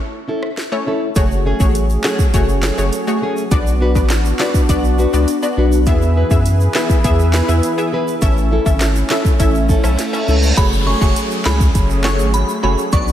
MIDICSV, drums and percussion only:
0, 0, Header, 1, 2, 480
1, 0, Start_track
1, 0, Key_signature, 3, "minor"
1, 0, Tempo, 588235
1, 948, Time_signature, 4, 2, 24, 8
1, 10706, End_track
2, 0, Start_track
2, 0, Title_t, "Drums"
2, 348, Note_on_c, 9, 37, 88
2, 429, Note_off_c, 9, 37, 0
2, 468, Note_on_c, 9, 38, 68
2, 550, Note_off_c, 9, 38, 0
2, 943, Note_on_c, 9, 82, 76
2, 948, Note_on_c, 9, 36, 119
2, 948, Note_on_c, 9, 42, 80
2, 1025, Note_off_c, 9, 82, 0
2, 1029, Note_off_c, 9, 36, 0
2, 1030, Note_off_c, 9, 42, 0
2, 1071, Note_on_c, 9, 82, 47
2, 1153, Note_off_c, 9, 82, 0
2, 1306, Note_on_c, 9, 82, 70
2, 1307, Note_on_c, 9, 36, 94
2, 1388, Note_off_c, 9, 36, 0
2, 1388, Note_off_c, 9, 82, 0
2, 1429, Note_on_c, 9, 42, 72
2, 1431, Note_on_c, 9, 82, 67
2, 1510, Note_off_c, 9, 42, 0
2, 1513, Note_off_c, 9, 82, 0
2, 1547, Note_on_c, 9, 82, 56
2, 1629, Note_off_c, 9, 82, 0
2, 1664, Note_on_c, 9, 39, 89
2, 1667, Note_on_c, 9, 38, 106
2, 1746, Note_off_c, 9, 39, 0
2, 1749, Note_off_c, 9, 38, 0
2, 1787, Note_on_c, 9, 36, 106
2, 1789, Note_on_c, 9, 82, 75
2, 1868, Note_off_c, 9, 36, 0
2, 1871, Note_off_c, 9, 82, 0
2, 1908, Note_on_c, 9, 36, 85
2, 1908, Note_on_c, 9, 42, 68
2, 1910, Note_on_c, 9, 82, 72
2, 1989, Note_off_c, 9, 42, 0
2, 1990, Note_off_c, 9, 36, 0
2, 1991, Note_off_c, 9, 82, 0
2, 2030, Note_on_c, 9, 82, 50
2, 2112, Note_off_c, 9, 82, 0
2, 2144, Note_on_c, 9, 39, 89
2, 2147, Note_on_c, 9, 38, 116
2, 2147, Note_on_c, 9, 82, 62
2, 2226, Note_off_c, 9, 39, 0
2, 2228, Note_off_c, 9, 82, 0
2, 2229, Note_off_c, 9, 38, 0
2, 2270, Note_on_c, 9, 82, 72
2, 2352, Note_off_c, 9, 82, 0
2, 2388, Note_on_c, 9, 42, 75
2, 2390, Note_on_c, 9, 82, 71
2, 2469, Note_off_c, 9, 42, 0
2, 2472, Note_off_c, 9, 82, 0
2, 2509, Note_on_c, 9, 82, 52
2, 2590, Note_off_c, 9, 82, 0
2, 2750, Note_on_c, 9, 82, 64
2, 2832, Note_off_c, 9, 82, 0
2, 2864, Note_on_c, 9, 82, 76
2, 2868, Note_on_c, 9, 36, 118
2, 2868, Note_on_c, 9, 42, 79
2, 2946, Note_off_c, 9, 82, 0
2, 2949, Note_off_c, 9, 36, 0
2, 2950, Note_off_c, 9, 42, 0
2, 2993, Note_on_c, 9, 82, 50
2, 3074, Note_off_c, 9, 82, 0
2, 3227, Note_on_c, 9, 36, 91
2, 3228, Note_on_c, 9, 82, 69
2, 3309, Note_off_c, 9, 36, 0
2, 3309, Note_off_c, 9, 82, 0
2, 3344, Note_on_c, 9, 39, 88
2, 3347, Note_on_c, 9, 38, 112
2, 3348, Note_on_c, 9, 42, 71
2, 3353, Note_on_c, 9, 82, 68
2, 3425, Note_off_c, 9, 39, 0
2, 3428, Note_off_c, 9, 38, 0
2, 3430, Note_off_c, 9, 42, 0
2, 3435, Note_off_c, 9, 82, 0
2, 3469, Note_on_c, 9, 82, 57
2, 3550, Note_off_c, 9, 82, 0
2, 3585, Note_on_c, 9, 39, 91
2, 3588, Note_on_c, 9, 38, 111
2, 3666, Note_off_c, 9, 39, 0
2, 3669, Note_off_c, 9, 38, 0
2, 3707, Note_on_c, 9, 36, 99
2, 3709, Note_on_c, 9, 82, 77
2, 3789, Note_off_c, 9, 36, 0
2, 3791, Note_off_c, 9, 82, 0
2, 3828, Note_on_c, 9, 36, 87
2, 3828, Note_on_c, 9, 42, 69
2, 3831, Note_on_c, 9, 82, 74
2, 3909, Note_off_c, 9, 42, 0
2, 3910, Note_off_c, 9, 36, 0
2, 3912, Note_off_c, 9, 82, 0
2, 3952, Note_on_c, 9, 82, 53
2, 4033, Note_off_c, 9, 82, 0
2, 4068, Note_on_c, 9, 82, 65
2, 4149, Note_off_c, 9, 82, 0
2, 4190, Note_on_c, 9, 82, 77
2, 4272, Note_off_c, 9, 82, 0
2, 4307, Note_on_c, 9, 42, 79
2, 4310, Note_on_c, 9, 82, 73
2, 4389, Note_off_c, 9, 42, 0
2, 4391, Note_off_c, 9, 82, 0
2, 4428, Note_on_c, 9, 82, 55
2, 4509, Note_off_c, 9, 82, 0
2, 4669, Note_on_c, 9, 82, 64
2, 4750, Note_off_c, 9, 82, 0
2, 4783, Note_on_c, 9, 82, 74
2, 4788, Note_on_c, 9, 36, 116
2, 4788, Note_on_c, 9, 42, 77
2, 4865, Note_off_c, 9, 82, 0
2, 4869, Note_off_c, 9, 36, 0
2, 4869, Note_off_c, 9, 42, 0
2, 4911, Note_on_c, 9, 82, 51
2, 4993, Note_off_c, 9, 82, 0
2, 5146, Note_on_c, 9, 82, 68
2, 5147, Note_on_c, 9, 36, 88
2, 5227, Note_off_c, 9, 82, 0
2, 5229, Note_off_c, 9, 36, 0
2, 5268, Note_on_c, 9, 42, 70
2, 5270, Note_on_c, 9, 82, 67
2, 5350, Note_off_c, 9, 42, 0
2, 5352, Note_off_c, 9, 82, 0
2, 5387, Note_on_c, 9, 82, 57
2, 5469, Note_off_c, 9, 82, 0
2, 5504, Note_on_c, 9, 39, 88
2, 5507, Note_on_c, 9, 38, 113
2, 5586, Note_off_c, 9, 39, 0
2, 5589, Note_off_c, 9, 38, 0
2, 5627, Note_on_c, 9, 36, 99
2, 5628, Note_on_c, 9, 82, 78
2, 5709, Note_off_c, 9, 36, 0
2, 5710, Note_off_c, 9, 82, 0
2, 5748, Note_on_c, 9, 36, 84
2, 5748, Note_on_c, 9, 42, 71
2, 5750, Note_on_c, 9, 82, 74
2, 5830, Note_off_c, 9, 36, 0
2, 5830, Note_off_c, 9, 42, 0
2, 5831, Note_off_c, 9, 82, 0
2, 5871, Note_on_c, 9, 82, 51
2, 5952, Note_off_c, 9, 82, 0
2, 5984, Note_on_c, 9, 39, 88
2, 5986, Note_on_c, 9, 82, 64
2, 5987, Note_on_c, 9, 38, 113
2, 6066, Note_off_c, 9, 39, 0
2, 6068, Note_off_c, 9, 82, 0
2, 6069, Note_off_c, 9, 38, 0
2, 6110, Note_on_c, 9, 82, 76
2, 6191, Note_off_c, 9, 82, 0
2, 6228, Note_on_c, 9, 42, 83
2, 6230, Note_on_c, 9, 82, 73
2, 6310, Note_off_c, 9, 42, 0
2, 6311, Note_off_c, 9, 82, 0
2, 6350, Note_on_c, 9, 82, 56
2, 6431, Note_off_c, 9, 82, 0
2, 6592, Note_on_c, 9, 82, 65
2, 6673, Note_off_c, 9, 82, 0
2, 6705, Note_on_c, 9, 82, 82
2, 6708, Note_on_c, 9, 36, 120
2, 6709, Note_on_c, 9, 42, 78
2, 6786, Note_off_c, 9, 82, 0
2, 6790, Note_off_c, 9, 36, 0
2, 6790, Note_off_c, 9, 42, 0
2, 6833, Note_on_c, 9, 82, 51
2, 6915, Note_off_c, 9, 82, 0
2, 7068, Note_on_c, 9, 36, 90
2, 7068, Note_on_c, 9, 82, 69
2, 7149, Note_off_c, 9, 36, 0
2, 7150, Note_off_c, 9, 82, 0
2, 7185, Note_on_c, 9, 39, 91
2, 7188, Note_on_c, 9, 38, 114
2, 7189, Note_on_c, 9, 42, 75
2, 7192, Note_on_c, 9, 82, 70
2, 7266, Note_off_c, 9, 39, 0
2, 7269, Note_off_c, 9, 38, 0
2, 7271, Note_off_c, 9, 42, 0
2, 7273, Note_off_c, 9, 82, 0
2, 7308, Note_on_c, 9, 82, 53
2, 7389, Note_off_c, 9, 82, 0
2, 7425, Note_on_c, 9, 39, 90
2, 7428, Note_on_c, 9, 38, 113
2, 7507, Note_off_c, 9, 39, 0
2, 7510, Note_off_c, 9, 38, 0
2, 7548, Note_on_c, 9, 36, 106
2, 7550, Note_on_c, 9, 82, 79
2, 7629, Note_off_c, 9, 36, 0
2, 7631, Note_off_c, 9, 82, 0
2, 7668, Note_on_c, 9, 42, 72
2, 7669, Note_on_c, 9, 36, 87
2, 7670, Note_on_c, 9, 82, 73
2, 7750, Note_off_c, 9, 36, 0
2, 7750, Note_off_c, 9, 42, 0
2, 7752, Note_off_c, 9, 82, 0
2, 7791, Note_on_c, 9, 82, 53
2, 7873, Note_off_c, 9, 82, 0
2, 7907, Note_on_c, 9, 82, 65
2, 7909, Note_on_c, 9, 36, 92
2, 7989, Note_off_c, 9, 82, 0
2, 7991, Note_off_c, 9, 36, 0
2, 8028, Note_on_c, 9, 37, 93
2, 8030, Note_on_c, 9, 82, 79
2, 8110, Note_off_c, 9, 37, 0
2, 8112, Note_off_c, 9, 82, 0
2, 8149, Note_on_c, 9, 38, 70
2, 8149, Note_on_c, 9, 42, 81
2, 8151, Note_on_c, 9, 82, 74
2, 8230, Note_off_c, 9, 42, 0
2, 8231, Note_off_c, 9, 38, 0
2, 8232, Note_off_c, 9, 82, 0
2, 8270, Note_on_c, 9, 82, 55
2, 8351, Note_off_c, 9, 82, 0
2, 8388, Note_on_c, 9, 82, 51
2, 8470, Note_off_c, 9, 82, 0
2, 8511, Note_on_c, 9, 82, 67
2, 8592, Note_off_c, 9, 82, 0
2, 8624, Note_on_c, 9, 82, 82
2, 8629, Note_on_c, 9, 36, 125
2, 8629, Note_on_c, 9, 42, 79
2, 8706, Note_off_c, 9, 82, 0
2, 8710, Note_off_c, 9, 36, 0
2, 8711, Note_off_c, 9, 42, 0
2, 8752, Note_on_c, 9, 82, 53
2, 8834, Note_off_c, 9, 82, 0
2, 8987, Note_on_c, 9, 82, 67
2, 8988, Note_on_c, 9, 36, 88
2, 9069, Note_off_c, 9, 36, 0
2, 9069, Note_off_c, 9, 82, 0
2, 9110, Note_on_c, 9, 42, 77
2, 9112, Note_on_c, 9, 82, 69
2, 9191, Note_off_c, 9, 42, 0
2, 9193, Note_off_c, 9, 82, 0
2, 9229, Note_on_c, 9, 82, 58
2, 9310, Note_off_c, 9, 82, 0
2, 9345, Note_on_c, 9, 39, 89
2, 9348, Note_on_c, 9, 38, 113
2, 9427, Note_off_c, 9, 39, 0
2, 9430, Note_off_c, 9, 38, 0
2, 9468, Note_on_c, 9, 36, 108
2, 9470, Note_on_c, 9, 82, 75
2, 9549, Note_off_c, 9, 36, 0
2, 9551, Note_off_c, 9, 82, 0
2, 9588, Note_on_c, 9, 42, 71
2, 9589, Note_on_c, 9, 36, 90
2, 9591, Note_on_c, 9, 82, 75
2, 9670, Note_off_c, 9, 42, 0
2, 9671, Note_off_c, 9, 36, 0
2, 9673, Note_off_c, 9, 82, 0
2, 9711, Note_on_c, 9, 82, 52
2, 9793, Note_off_c, 9, 82, 0
2, 9825, Note_on_c, 9, 39, 91
2, 9828, Note_on_c, 9, 38, 111
2, 9906, Note_off_c, 9, 39, 0
2, 9909, Note_off_c, 9, 38, 0
2, 9949, Note_on_c, 9, 82, 76
2, 10031, Note_off_c, 9, 82, 0
2, 10068, Note_on_c, 9, 42, 82
2, 10070, Note_on_c, 9, 82, 79
2, 10149, Note_off_c, 9, 42, 0
2, 10151, Note_off_c, 9, 82, 0
2, 10189, Note_on_c, 9, 82, 58
2, 10271, Note_off_c, 9, 82, 0
2, 10430, Note_on_c, 9, 82, 67
2, 10512, Note_off_c, 9, 82, 0
2, 10544, Note_on_c, 9, 82, 78
2, 10549, Note_on_c, 9, 36, 120
2, 10549, Note_on_c, 9, 42, 79
2, 10625, Note_off_c, 9, 82, 0
2, 10630, Note_off_c, 9, 36, 0
2, 10631, Note_off_c, 9, 42, 0
2, 10672, Note_on_c, 9, 82, 51
2, 10706, Note_off_c, 9, 82, 0
2, 10706, End_track
0, 0, End_of_file